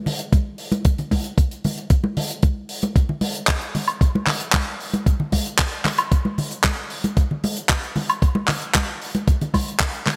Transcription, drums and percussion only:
0.06 open hi-hat, low conga
0.19 closed hi-hat
0.32 kick, closed hi-hat, high conga
0.58 open hi-hat
0.72 closed hi-hat, high conga
0.84 kick, closed hi-hat
0.98 closed hi-hat, low conga
1.11 kick, open hi-hat, high conga
1.24 closed hi-hat
1.38 kick, closed hi-hat
1.51 closed hi-hat
1.64 open hi-hat, high conga, low conga
1.77 closed hi-hat
1.90 kick, closed hi-hat
2.04 high conga
2.17 open hi-hat, low conga
2.30 closed hi-hat
2.42 kick, closed hi-hat, high conga
2.69 open hi-hat
2.82 closed hi-hat, high conga
2.96 kick, closed hi-hat
3.09 low conga
3.21 open hi-hat, high conga
3.35 closed hi-hat
3.47 kick, clap, closed hi-hat
3.61 closed hi-hat
3.75 open hi-hat, high conga, low conga
3.88 closed hi-hat, high woodblock
4.01 kick, closed hi-hat
4.15 high conga
4.27 clap, open hi-hat, low conga
4.40 closed hi-hat
4.53 kick, clap, closed hi-hat, high conga
4.80 open hi-hat
4.94 closed hi-hat, high conga
5.06 kick, closed hi-hat
5.20 low conga
5.32 kick, open hi-hat, high conga
5.46 closed hi-hat
5.59 kick, clap, closed hi-hat
5.72 closed hi-hat
5.85 clap, open hi-hat, high conga, low conga
5.98 closed hi-hat, high woodblock
6.11 kick, closed hi-hat
6.25 high conga
6.38 open hi-hat, low conga
6.51 closed hi-hat
6.64 kick, clap, closed hi-hat, high conga
6.90 open hi-hat
7.04 closed hi-hat, high conga
7.16 kick, closed hi-hat
7.31 low conga
7.43 open hi-hat, high conga
7.56 closed hi-hat
7.69 kick, clap, closed hi-hat
7.83 closed hi-hat
7.96 open hi-hat, high conga, low conga
8.09 closed hi-hat, high woodblock
8.22 kick, closed hi-hat
8.35 high conga
8.48 clap, open hi-hat, low conga
8.61 closed hi-hat
8.75 kick, clap, closed hi-hat, high conga
9.01 open hi-hat
9.14 closed hi-hat, high conga
9.27 kick, closed hi-hat
9.41 closed hi-hat, low conga
9.54 kick, open hi-hat, high conga, high woodblock
9.68 closed hi-hat
9.80 kick, clap, closed hi-hat
9.93 closed hi-hat
10.06 clap, open hi-hat, high conga, low conga

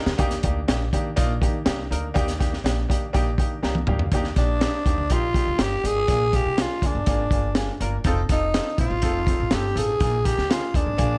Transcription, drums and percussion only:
0.06 snare
0.18 kick, closed hi-hat
0.31 snare, closed hi-hat
0.43 kick, closed hi-hat
0.68 snare, closed hi-hat
0.93 kick, closed hi-hat
1.17 kick, closed hi-hat
1.42 kick, closed hi-hat
1.66 snare, closed hi-hat
1.92 closed hi-hat
2.16 kick, closed hi-hat
2.28 snare, closed hi-hat
2.41 kick, snare, closed hi-hat
2.53 snare
2.66 snare, closed hi-hat
2.90 kick, closed hi-hat
3.15 kick, closed hi-hat
3.38 kick, closed hi-hat
3.63 snare
3.75 high tom
3.87 mid tom
3.99 floor tom
4.12 kick, closed hi-hat
4.24 snare
4.36 kick, snare, closed hi-hat
4.61 snare, closed hi-hat
4.86 kick, closed hi-hat
5.10 kick, closed hi-hat
5.34 kick, closed hi-hat
5.59 snare, closed hi-hat
5.85 closed hi-hat
6.08 kick, closed hi-hat
6.33 kick, closed hi-hat
6.58 snare, closed hi-hat
6.82 kick, closed hi-hat
7.06 kick, closed hi-hat
7.31 kick, closed hi-hat
7.55 snare, closed hi-hat
7.81 closed hi-hat
8.04 kick, closed hi-hat
8.29 kick, snare, closed hi-hat
8.54 snare, closed hi-hat
8.78 kick, closed hi-hat
9.02 kick, closed hi-hat
9.27 kick, closed hi-hat
9.51 snare, closed hi-hat
9.77 closed hi-hat
10.00 kick, closed hi-hat
10.25 kick, closed hi-hat
10.38 snare
10.51 snare, closed hi-hat
10.74 kick, closed hi-hat
10.98 kick, closed hi-hat

